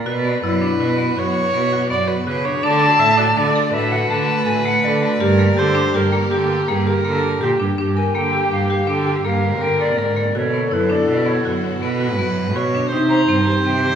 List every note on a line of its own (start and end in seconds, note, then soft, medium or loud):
0.00 1.17 D5 medium
0.06 0.40 B2 medium
0.06 2.61 B2 medium
0.06 2.61 B3 medium
0.06 0.23 F#4 medium
0.06 2.61 F#4 medium
0.06 0.43 B4 medium
0.25 0.41 B3 medium
0.43 0.77 F#2 medium
0.43 0.60 E4 medium
0.43 1.19 B4 medium
0.61 0.78 D4 medium
0.79 1.14 B2 medium
0.79 0.96 F#4 medium
0.99 1.15 B3 medium
1.16 1.51 F#2 medium
1.16 1.49 F#4 medium
1.16 1.90 C#5 medium
1.53 1.87 B2 medium
1.53 1.70 B3 medium
1.73 1.89 F#4 medium
1.90 2.24 F#2 medium
1.90 2.23 B3 medium
1.90 2.09 D5 medium
2.08 2.27 B4 medium
2.26 2.61 C#3 medium
2.26 2.43 F#4 medium
2.26 2.47 B4 medium
2.45 2.61 D4 medium
2.45 2.64 C#5 medium
2.63 2.98 D3 loud
2.63 7.74 D3 medium
2.63 5.19 A3 medium
2.63 2.80 D4 medium
2.63 5.19 F#4 medium
2.63 3.01 D5 loud
2.63 3.39 A5 loud
2.82 2.98 A4 medium
2.99 3.35 A2 loud
2.99 3.17 A3 medium
2.99 3.19 E5 loud
3.17 3.35 F#4 medium
3.17 3.73 D5 medium
3.37 3.71 D3 medium
3.37 3.53 D4 medium
3.37 3.75 D5 medium
3.56 3.72 A4 medium
3.73 4.08 A2 medium
3.73 3.90 D4 medium
3.73 5.22 B4 medium
3.73 3.93 E5 medium
3.92 4.09 F#4 medium
3.92 4.08 F#5 medium
4.09 4.44 D3 medium
4.09 4.43 A3 medium
4.09 4.47 A5 medium
4.46 4.81 A2 medium
4.46 4.63 A4 medium
4.46 4.59 G#5 medium
4.59 4.66 G#5 medium
4.65 4.82 A3 medium
4.65 4.86 F#5 medium
4.83 5.18 D3 medium
4.83 5.00 A4 medium
4.83 6.31 D5 medium
5.02 5.19 A3 medium
5.20 5.54 G2 loud
5.20 7.76 A#3 medium
5.20 5.37 G4 loud
5.20 7.75 G4 medium
5.20 5.60 A#4 loud
5.39 5.55 A#3 medium
5.57 5.91 D3 loud
5.57 5.73 G4 medium
5.57 5.97 C5 loud
5.75 5.91 D4 medium
5.94 6.28 G2 medium
5.94 6.10 G4 medium
5.94 6.33 A#4 medium
6.12 6.29 A#3 medium
6.31 6.65 D3 medium
6.31 6.64 G4 medium
6.31 6.70 G4 medium
6.68 7.02 G2 medium
6.68 6.84 A#3 medium
6.68 6.88 G#4 medium
6.87 7.03 G4 medium
6.87 7.44 A#4 medium
7.05 7.38 D3 medium
7.05 7.37 A#3 medium
7.41 7.58 A#2 medium
7.41 7.57 G4 medium
7.41 7.79 G4 medium
7.60 7.76 G2 medium
7.60 7.76 D4 medium
7.77 8.11 G2 medium
7.77 12.88 D3 medium
7.77 10.32 A#3 medium
7.77 7.94 D4 medium
7.77 10.32 G4 medium
7.77 9.27 G4 medium
7.96 8.13 A#4 medium
7.96 8.15 G#5 medium
8.14 8.48 D3 medium
8.14 8.31 A#3 medium
8.14 8.51 G5 medium
8.33 8.49 G4 medium
8.50 8.85 G2 medium
8.50 8.67 D4 medium
8.50 8.69 F5 medium
8.69 8.86 G4 medium
8.69 8.89 F5 medium
8.87 9.21 D3 medium
8.87 9.04 D4 medium
8.87 9.05 G5 medium
9.06 9.22 G4 medium
9.06 9.12 G5 medium
9.23 9.62 G2 medium
9.23 9.57 A#3 medium
9.23 10.37 A#4 medium
9.23 9.63 F5 medium
9.60 9.99 D3 medium
9.60 9.78 A#4 medium
9.60 9.80 G5 medium
9.80 9.96 A#3 medium
9.80 9.97 D5 medium
9.97 10.32 G#2 medium
9.97 10.14 A#4 medium
9.97 10.16 D5 medium
10.16 10.33 A#3 medium
10.16 10.38 D5 medium
10.34 10.68 B2 medium
10.34 12.90 B3 medium
10.34 12.89 F#4 medium
10.34 10.51 F#4 medium
10.34 11.85 A4 medium
10.34 10.74 C#5 medium
10.53 10.70 B3 medium
10.71 11.05 F#2 medium
10.71 10.88 E4 medium
10.71 10.93 B4 medium
10.89 11.06 D4 medium
10.89 11.09 D5 medium
11.07 11.42 B2 medium
11.07 11.24 F#4 medium
11.07 11.29 D5 medium
11.26 11.43 B3 medium
11.26 11.64 C#5 medium
11.45 11.79 F#2 medium
11.45 11.78 F#4 medium
11.81 12.19 B2 medium
11.81 11.98 B3 medium
11.81 12.57 B4 medium
12.01 12.17 F#4 medium
12.18 12.57 F#2 medium
12.18 12.51 B3 medium
12.55 12.89 B2 medium
12.55 12.72 F#4 medium
12.55 12.91 C#5 medium
12.75 12.90 D4 medium
12.91 13.26 C3 medium
12.91 13.95 D#3 medium
12.91 13.95 C4 medium
12.91 13.09 D#4 medium
12.91 13.95 G4 medium
12.91 13.95 C5 loud
13.09 13.27 C5 medium
13.09 13.44 A#5 loud
13.28 13.63 G2 medium
13.28 13.45 C4 medium
13.46 13.63 G4 medium
13.65 13.95 C3 medium
13.65 13.81 C4 medium
13.65 13.95 G5 medium
13.84 13.95 G4 medium